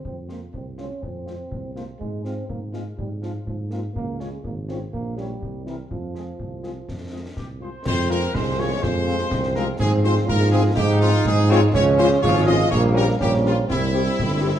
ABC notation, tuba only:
X:1
M:2/4
L:1/8
Q:1/4=123
K:Fm
V:1 name="Tuba" clef=bass
F,,2 C,,2 | F,,2 C,,2 | A,,2 A,,2 | A,,2 A,,2 |
D,,2 A,,,2 | B,,,2 C,,2 | F,,2 C,,2 | F,,2 C,,2 |
F,,2 C,,2 | F,,2 C,,2 | A,,2 A,,2 | A,,2 A,,2 |
D,,2 A,,,2 | B,,,2 B,,,2 | C,,2 G,,,2 |]